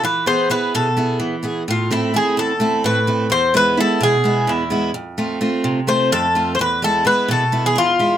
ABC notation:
X:1
M:7/8
L:1/16
Q:1/4=128
K:Am
V:1 name="Bouzouki"
B2 c2 B2 A4 z4 | F2 E2 ^G2 A4 B4 | c2 B2 A2 ^G4 E4 | z8 c2 A3- A/2 c/2 |
B2 A2 B2 A3 ^G F4 |]
V:2 name="Steel-string acoustic guitar"
E,2 [B,E^G]2 [B,EG]2 B,,2 [B,EG]2 E,2 [B,EG]2 | A,,2 [A,CE]2 [A,CE]2 E,,2 [A,CE]2 A,,2 [A,CE]2 | E,,2 [^G,B,E]2 [G,B,E]2 B,,2 [G,B,E]2 E,,2 [G,B,E]2 | F,,2 [A,CF]2 [A,CF]2 C,2 [A,CF]2 F,,2 [A,CF]2 |
E,,2 [^G,B,E]2 [G,B,E]2 B,,2 [G,B,E]2 E,,2 [G,B,E]2 |]